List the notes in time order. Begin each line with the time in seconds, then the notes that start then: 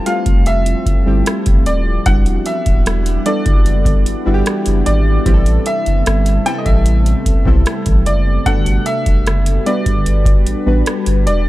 Already playing: F3 G3 A3 C4 E4 F4 A4
0.06 G3 A3 C4 F4 F5, closed hi-hat
0.26 F1, kick, closed hi-hat
0.46 E5, closed hi-hat
0.66 closed hi-hat
0.86 G1, kick, closed hi-hat
1.06 G1 G3 A3 C4 E4 G4
1.26 cross-stick, closed hi-hat
1.46 F1, kick, closed hi-hat
1.66 D#1 D5, closed hi-hat
2.06 E1 E3 G3 B3 D4 E4 F#4 F#5, kick, closed hi-hat
2.26 closed hi-hat
2.46 E5, closed hi-hat
2.66 D1, kick, closed hi-hat
2.86 E1, cross-stick, closed hi-hat
3.06 closed hi-hat
3.26 G3 B3 D4 E4 A4 D5, closed hi-hat
3.46 F#1, kick, closed hi-hat
3.66 closed hi-hat
3.85 kick, closed hi-hat
4.06 G1, closed hi-hat
4.26 G1 G3 B3 D4 E4 F#4
4.34 G4
4.46 cross-stick, closed hi-hat
4.66 F#1, closed hi-hat
4.86 G#1 D5, closed hi-hat
5.25 A1 C3 G3 A3 B3 C4 E4 G4, kick, closed hi-hat
5.34 A4
5.46 closed hi-hat
5.66 E5, closed hi-hat
5.86 F#1, closed hi-hat
6.06 G1, cross-stick, closed hi-hat
6.26 closed hi-hat
6.46 G3 B3 C4 E4 A4 G5, closed hi-hat
6.58 D#5
6.66 A1 E5, kick, closed hi-hat
6.86 closed hi-hat
7.06 closed hi-hat
7.26 B1, kick, closed hi-hat
7.46 B1 G3 B3 C4 E4 A4, kick
7.66 cross-stick, closed hi-hat
7.86 A1, kick, closed hi-hat
8.06 F#1 D5, closed hi-hat
8.46 G1 G3 B3 D4 F#4 A4 B4 F#5, kick, closed hi-hat
8.66 closed hi-hat
8.86 E5, closed hi-hat
9.06 E1, kick, closed hi-hat
9.27 F#1, cross-stick, closed hi-hat
9.46 closed hi-hat
9.66 G3 B3 D4 F#4 B4 D5, closed hi-hat
9.86 G1, kick, closed hi-hat
10.06 closed hi-hat
10.26 kick, closed hi-hat
10.47 A1, closed hi-hat
10.66 A1 G3 B3 D4 F#4 B4
10.86 cross-stick, closed hi-hat
11.06 G1, closed hi-hat
11.27 E1 D5, closed hi-hat